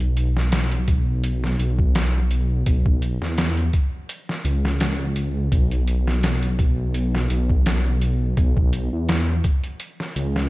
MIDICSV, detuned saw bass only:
0, 0, Header, 1, 2, 480
1, 0, Start_track
1, 0, Tempo, 714286
1, 1790, Time_signature, 4, 2, 24, 8
1, 7050, End_track
2, 0, Start_track
2, 0, Title_t, "Detuned saw bass"
2, 0, Program_c, 0, 39
2, 0, Note_on_c, 0, 35, 89
2, 1049, Note_off_c, 0, 35, 0
2, 1070, Note_on_c, 0, 35, 105
2, 1769, Note_off_c, 0, 35, 0
2, 1791, Note_on_c, 0, 35, 90
2, 2135, Note_off_c, 0, 35, 0
2, 2159, Note_on_c, 0, 40, 83
2, 2488, Note_off_c, 0, 40, 0
2, 2987, Note_on_c, 0, 37, 83
2, 3688, Note_off_c, 0, 37, 0
2, 3710, Note_on_c, 0, 35, 97
2, 4889, Note_off_c, 0, 35, 0
2, 4907, Note_on_c, 0, 35, 99
2, 5608, Note_off_c, 0, 35, 0
2, 5627, Note_on_c, 0, 35, 89
2, 5974, Note_off_c, 0, 35, 0
2, 5999, Note_on_c, 0, 40, 75
2, 6329, Note_off_c, 0, 40, 0
2, 6828, Note_on_c, 0, 37, 86
2, 7050, Note_off_c, 0, 37, 0
2, 7050, End_track
0, 0, End_of_file